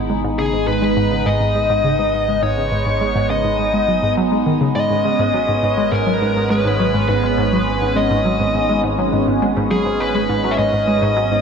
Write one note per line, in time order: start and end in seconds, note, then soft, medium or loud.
0.00 4.73 G#1 medium
0.00 11.41 G#3 medium
0.00 11.41 B3 medium
0.00 4.72 D#4 medium
0.10 0.19 G#3 medium
0.24 0.34 G#2 loud
0.39 0.48 C#3 medium
0.39 0.67 G#4 medium
0.53 0.67 G#2 medium
0.68 0.82 G#2 medium
0.68 1.28 B4 medium
0.82 0.92 G#3 medium
0.97 1.06 G#2 medium
1.12 1.21 C#3 medium
1.26 1.39 G#2 medium
1.26 2.42 D#5 loud
1.41 1.55 G#2 medium
1.55 1.65 G#3 medium
1.70 1.79 G#2 loud
1.84 1.94 C#3 medium
1.99 2.12 G#2 medium
2.14 2.27 G#2 medium
2.28 2.38 G#3 medium
2.43 2.52 G#2 loud
2.43 3.30 C#5 medium
2.57 2.67 C#3 medium
2.72 2.85 G#2 medium
2.86 3.00 G#2 medium
3.01 3.10 G#3 medium
3.15 3.25 G#2 loud
3.30 3.40 C#3 medium
3.30 4.14 D#5 medium
3.45 3.58 G#2 medium
3.59 3.73 G#2 medium
3.74 3.83 G#3 medium
3.88 3.98 F#3 medium
4.03 4.12 G#2 medium
4.17 4.27 F#3 medium
4.32 4.38 G#3 medium
4.46 4.52 D#3 medium
4.61 4.70 C#3 loud
4.75 11.41 G#1 medium
4.75 4.89 G#2 medium
4.75 11.41 C#4 medium
4.75 5.96 D#5 loud
4.90 5.04 G#2 medium
5.05 5.14 G#3 medium
5.19 5.29 G#2 loud
5.34 5.40 F#3 medium
5.49 5.62 G#2 medium
5.63 5.77 G#2 medium
5.78 5.87 G#3 medium
5.92 6.02 G#2 loud
5.92 6.50 A#4 medium
6.07 6.12 F#3 medium
6.21 6.35 G#2 medium
6.36 6.50 G#2 medium
6.50 6.60 G#3 medium
6.50 7.07 B4 medium
6.65 6.74 G#2 loud
6.80 6.85 F#3 medium
6.94 7.08 G#2 medium
7.09 7.23 G#2 medium
7.09 7.99 B4 medium
7.24 7.33 G#3 medium
7.38 7.47 G#2 loud
7.53 7.58 F#3 medium
7.67 7.80 G#2 medium
7.82 7.96 G#2 medium
7.96 8.05 G#3 medium
7.96 8.80 D#5 medium
8.11 8.20 G#2 loud
8.25 8.31 F#3 medium
8.40 8.53 G#2 medium
8.54 8.68 G#2 medium
8.69 8.79 G#3 medium
8.84 8.93 G#2 loud
8.99 9.04 F#3 medium
9.13 9.26 G#2 medium
9.28 9.41 G#2 medium
9.42 9.51 G#3 medium
9.57 9.66 G#2 loud
9.71 9.77 F#3 medium
9.71 10.01 G#4 medium
9.86 9.99 G#2 medium
10.00 10.14 G#2 medium
10.00 10.53 B4 medium
10.15 10.24 G#3 medium
10.30 10.39 G#2 loud
10.44 10.50 F#3 medium
10.51 10.58 E5 medium
10.58 10.72 G#2 medium
10.58 11.41 D#5 loud
10.73 10.87 G#2 medium
10.88 10.97 G#3 medium
11.02 11.11 G#2 loud
11.17 11.22 F#3 medium
11.31 11.41 G#2 medium